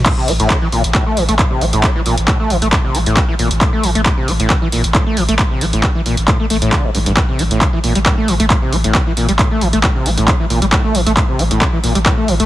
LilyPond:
<<
  \new Staff \with { instrumentName = "Acid bass" } { \clef bass \time 4/4 \key a \phrygian \tempo 4 = 135 a,16 c16 g16 a,16 d16 e16 bes,16 r16 a,16 a16 e16 a16 a,16 c16 g16 a,16 | d16 e16 bes,16 r16 a,16 a16 e16 a16 a,16 c16 g16 a,16 d16 e16 bes,16 r16 | a,16 a16 e16 a16 a,16 c16 g16 a,16 d16 e16 bes,16 r16 a,16 a16 e16 a16 | a,16 c16 g16 a,16 d16 e16 bes,16 r16 a,16 a16 a16 a,16 d16 g,16 g,16 g,16 |
a,16 c16 g16 a,16 d16 e16 bes,16 g16 a,16 a16 e16 a16 a,16 c16 g16 a,16 | d16 e16 bes,16 g16 a,16 a16 e16 a16 a,16 c16 g16 a,16 d16 e16 bes,16 g16 | a,16 a16 e16 a16 a,16 c16 g16 a,16 d16 e16 bes,16 g16 a,16 a16 e16 a16 | }
  \new Staff \with { instrumentName = "Sub bass" } { \clef bass \time 4/4 \key a \phrygian r8 a,,16 a,,16 r8 a,,16 a,,16 r8 a,,16 a,,16 r8 a,,16 a,,16 | r8 a,,16 a,,16 r8 a,,16 a,,16 r8 a,,16 a,,16 r8 a,,16 a,,16 | r8 a,,16 a,,16 r8 a,,16 a,,16 r8 a,,16 a,,16 r8 a,,16 a,,16 | r8 a,,16 a,,16 r8 a,,16 a,,16 r8 a,,16 a,,16 r8 a,,16 a,,16 |
r8 a,,16 a,,16 r8 a,,16 a,,16 r8 a,,16 a,,16 r8 a,,16 a,,16 | r8 a,,16 a,,16 r8 a,,16 a,,16 r8 a,,16 a,,16 r8 a,,16 a,,16 | r8 a,,16 a,,16 r8 a,,16 a,,16 r8 a,,16 a,,16 r8 a,,16 a,,16 | }
  \new DrumStaff \with { instrumentName = "Drums" } \drummode { \time 4/4 <hc cymc hh bd>8 hho16 hh16 <hc hh bd>8 hho16 hh16 <hc hh bd>8 hho16 hh16 <hc hh bd>8 hho16 hh16 | <hc hh bd>8 hho16 hh16 <hc hh bd>8 hho16 hh16 <hc hh bd>8 hho16 hh16 <hc hh bd>8 hho16 hh16 | <hc hh bd>8 hho16 hh16 <hc hh bd>8 hho16 hh16 <hc hh bd>8 hho16 hh16 <hc hh bd>8 hho16 hh16 | <hc hh bd>8 hho16 hh16 <hc hh bd>8 hho16 hh16 <hc hh bd>8 hho16 hh16 <hc hh bd>8 hho16 hh16 |
<hc hh bd>8 hho16 hh16 <hc hh bd>8 hho16 hh16 <hc hh bd>8 hho16 hh16 <hc hh bd>8 hho16 hh16 | <hc hh bd>8 hho16 hh16 <hc hh bd>8 hho16 hh16 <hc hh bd>8 hho16 hh16 <hc hh bd>8 hho16 hh16 | <hc hh bd>8 hho16 hh16 <hc hh bd>8 hho16 hh16 <hc hh bd>8 hho16 hh16 <hc hh bd>8 hho16 hh16 | }
>>